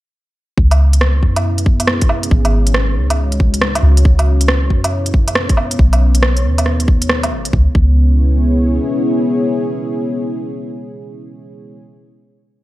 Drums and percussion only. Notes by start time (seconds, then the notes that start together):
0.58 kick
0.71 closed hi-hat, low woodblock
0.93 closed hi-hat
1.01 cross-stick
1.23 kick
1.36 closed hi-hat, low woodblock
1.58 closed hi-hat
1.66 kick
1.80 closed hi-hat, low woodblock
1.87 cross-stick
2.01 kick, closed hi-hat
2.09 low woodblock
2.23 closed hi-hat
2.31 kick
2.45 closed hi-hat, low woodblock
2.67 closed hi-hat
2.74 cross-stick
3.10 closed hi-hat, low woodblock
3.32 closed hi-hat
3.40 kick
3.54 closed hi-hat
3.62 cross-stick
3.75 closed hi-hat, low woodblock
3.97 closed hi-hat
4.05 kick
4.19 closed hi-hat, low woodblock
4.41 closed hi-hat
4.48 cross-stick
4.70 kick
4.84 closed hi-hat, low woodblock
5.06 closed hi-hat
5.14 kick
5.28 closed hi-hat, low woodblock
5.35 cross-stick
5.49 kick, closed hi-hat
5.57 low woodblock
5.71 closed hi-hat
5.79 kick
5.93 closed hi-hat, low woodblock
6.15 closed hi-hat
6.23 cross-stick
6.37 closed hi-hat
6.58 closed hi-hat, low woodblock
6.66 cross-stick
6.80 closed hi-hat
6.88 kick
7.02 closed hi-hat
7.09 cross-stick
7.23 closed hi-hat, low woodblock
7.45 closed hi-hat
7.53 kick
7.75 kick